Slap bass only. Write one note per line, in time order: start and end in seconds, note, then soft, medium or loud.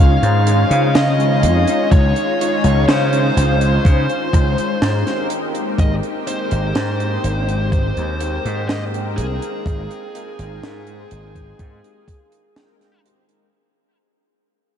0.00 0.16 C#2 medium
0.22 0.63 G#2 medium
0.71 1.45 C#3 loud
1.43 1.64 F2 loud
1.92 2.12 C#2 loud
2.64 2.85 C#2 medium
2.88 3.29 C#3 loud
3.37 3.78 C#2 medium
3.85 4.06 C#3 medium
4.33 4.54 C#2 loud
4.82 5.03 G#2 medium
5.78 5.99 G#1 loud
6.52 6.72 G#1 loud
6.76 7.17 G#2 loud
7.24 7.91 G#1 medium
7.97 8.38 D#2 medium
8.45 9.19 G#2 loud
9.18 9.38 C2 medium
9.66 9.86 G#1 loud
10.39 10.59 G#1 loud
10.63 11.04 G#2 loud
11.11 11.52 G#1 medium
11.59 11.80 G#2 medium